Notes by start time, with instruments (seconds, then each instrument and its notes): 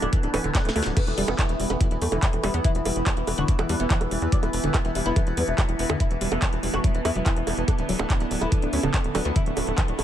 Already playing: synth drone E3 B3, analog synth pad D4 A4 A5
0.02 analog synth bass D1, oud D4, closed hi-hat, high bongo
0.13 oud D3, synth arpeggio sound E3, kick, closed hi-hat
0.23 analog synth bass D1, oud D3, synth arpeggio sound D4, closed hi-hat
0.34 analog synth bass D1, synth arpeggio sound E3, oud C#4, open hi-hat, high bongo
0.44 analog synth bass D1, oud D3, synth arpeggio sound D3, closed hi-hat
0.55 oud D3, kick, snare, clap, closed hi-hat
0.65 analog synth bass D1, synth arpeggio sound A3, snare, closed hi-hat
0.76 analog synth bass D2, oud D3, synth arpeggio sound F#3 A3, open hi-hat, high bongo
0.83 analog synth bass D1, oud D3, synth arpeggio sound F#3, snare, closed hi-hat
0.97 synth drone E3 B3, oud B3, analog synth pad E4, kick, closed hi-hat, crash, high bongo
1.07 analog synth bass E1, oud E3, synth arpeggio sound E3, closed hi-hat
1.13 analog synth pad B5
1.18 analog synth bass E1, oud E3, synth arpeggio sound G3, open hi-hat
1.28 analog synth bass E1, oud E3, synth arpeggio sound B3, closed hi-hat, high bongo
1.39 synth arpeggio sound E3, kick, clap, closed hi-hat
1.49 analog synth bass E1, oud E3, closed hi-hat
1.60 analog synth bass E1, oud E3, synth arpeggio sound G3, analog synth pad B4, open hi-hat
1.70 analog synth bass E1, oud B3, closed hi-hat, high bongo
1.81 oud E3, synth arpeggio sound F#3, kick, closed hi-hat
1.91 analog synth bass E1, oud E3, synth arpeggio sound E4, closed hi-hat
2.02 analog synth bass E2, oud A3, open hi-hat
2.12 analog synth bass E1, synth arpeggio sound D3, oud E3, closed hi-hat, high bongo
2.23 kick, clap, closed hi-hat
2.33 analog synth bass E1, synth arpeggio sound E3, closed hi-hat
2.43 analog synth bass E1, oud E3, synth arpeggio sound G3 B3, open hi-hat, high bongo
2.54 analog synth bass E2, oud E3, synth arpeggio sound B3, closed hi-hat
2.64 synth arpeggio sound E3, oud E4, kick, closed hi-hat
2.75 analog synth bass E1, oud E3, closed hi-hat
2.85 analog synth bass E1, oud E3, synth arpeggio sound G3, open hi-hat, high bongo
2.96 analog synth bass E1, oud E3, closed hi-hat
3.06 synth arpeggio sound F#3, kick, clap, closed hi-hat
3.17 analog synth bass E1, oud E3, synth arpeggio sound E4, closed hi-hat
3.27 analog synth bass E1, oud E3, open hi-hat, high bongo
3.38 analog synth bass E1, synth arpeggio sound D3 D4, oud F#4, closed hi-hat
3.48 oud E3, synth arpeggio sound D4, kick, closed hi-hat
3.59 analog synth bass E1, synth arpeggio sound E3, oud E3, closed hi-hat, high bongo
3.69 analog synth bass E2, synth arpeggio sound G3, oud D4, open hi-hat
3.80 analog synth bass E1, oud E3, synth arpeggio sound B3, closed hi-hat
3.90 synth arpeggio sound E3, oud E3, kick, clap, closed hi-hat
4.00 analog synth bass E1, analog synth pad A5, closed hi-hat, high bongo
4.11 analog synth bass E1, oud E3, synth arpeggio sound G3, open hi-hat
4.22 analog synth bass E2, oud E3, closed hi-hat
4.32 synth arpeggio sound F#3, oud D4, kick, closed hi-hat
4.43 analog synth bass E1, oud E3, synth arpeggio sound E4, closed hi-hat, high bongo
4.53 analog synth bass E1, oud E3, open hi-hat
4.64 analog synth bass E1, synth arpeggio sound D3, oud E3, closed hi-hat
4.74 kick, clap, closed hi-hat, high bongo
4.85 analog synth bass E1, synth arpeggio sound E3, oud E3, closed hi-hat
4.95 analog synth bass E1, oud E3, synth arpeggio sound G3, open hi-hat
5.06 analog synth bass E1, synth arpeggio sound B3, oud E4, closed hi-hat
5.16 synth arpeggio sound E3, oud E3, kick, closed hi-hat, high bongo
5.27 analog synth bass E1, oud E3, closed hi-hat
5.37 analog synth bass E2, synth arpeggio sound G3, oud B3, open hi-hat
5.48 analog synth bass E1, oud E3
5.58 oud E3, synth arpeggio sound F#3, kick, clap, closed hi-hat, high bongo
5.69 analog synth bass E1, synth arpeggio sound E4, closed hi-hat
5.79 analog synth bass E1, oud E3, synth arpeggio sound B3, open hi-hat
5.90 analog synth bass E2, synth arpeggio sound D3 B3, oud E3, high bongo
6.00 oud E4, kick, closed hi-hat
6.11 analog synth bass E1, synth arpeggio sound E3, oud E3, closed hi-hat
6.21 analog synth bass E1, oud E3, synth arpeggio sound G3, open hi-hat
6.32 analog synth bass E1, oud E3, synth arpeggio sound A3 B3, high bongo
6.42 synth arpeggio sound E3 A3, kick, clap, closed hi-hat
6.53 analog synth bass E1, oud E3, closed hi-hat
6.63 analog synth bass E1, oud E3, synth arpeggio sound G3, open hi-hat
6.74 analog synth bass E1, oud F#4, high bongo
6.84 oud E3, synth arpeggio sound F#3, kick, closed hi-hat
6.95 analog synth bass E1, oud E3, synth arpeggio sound E4, closed hi-hat
7.05 analog synth bass E2, oud E4, open hi-hat, high bongo
7.16 analog synth bass E1, oud E3, synth arpeggio sound F#3, closed hi-hat
7.26 synth arpeggio sound E3, oud E3, kick, clap, closed hi-hat
7.37 analog synth bass E1, synth arpeggio sound E3, closed hi-hat
7.47 analog synth bass E1, oud E3, synth arpeggio sound G3, open hi-hat, high bongo
7.57 analog synth bass E1, synth arpeggio sound E3, oud E3, closed hi-hat
7.68 analog synth pad D4, oud D4, kick, closed hi-hat, high bongo
7.78 analog synth bass D1, synth arpeggio sound D3, oud D3, closed hi-hat
7.89 analog synth bass D1, oud D3, synth arpeggio sound F#3, open hi-hat
7.99 analog synth bass D1, oud D3, synth arpeggio sound A3, high bongo
8.10 synth arpeggio sound D3, kick, clap, closed hi-hat
8.20 analog synth bass D1, oud D3, closed hi-hat
8.27 analog synth bass D1, oud D3, synth arpeggio sound F#3, analog synth pad A4, open hi-hat
8.41 analog synth bass D1, oud E4, closed hi-hat, high bongo
8.52 synth arpeggio sound E3, kick, closed hi-hat
8.62 analog synth bass D1, oud D3, synth arpeggio sound D4, closed hi-hat
8.73 analog synth bass D2, oud C#4, open hi-hat
8.83 analog synth bass D1, synth arpeggio sound C#3, closed hi-hat, high bongo
8.94 oud D3, kick, clap, closed hi-hat
9.04 analog synth bass D1, synth arpeggio sound D3, closed hi-hat
9.15 analog synth bass D1, oud D3, synth arpeggio sound F#3 B3, open hi-hat, high bongo
9.25 analog synth bass D2, oud D3, synth arpeggio sound A3 B3, closed hi-hat
9.36 synth arpeggio sound D3, oud E4, kick, closed hi-hat
9.46 analog synth bass D1, oud A3, closed hi-hat
9.57 analog synth bass D1, synth arpeggio sound F#3, oud A3, open hi-hat, high bongo
9.67 analog synth bass D1, oud A3, closed hi-hat
9.78 synth arpeggio sound E3, kick, clap, closed hi-hat
9.88 analog synth bass D1, oud A3, synth arpeggio sound D4, closed hi-hat
9.99 analog synth bass D1, oud A3, open hi-hat, high bongo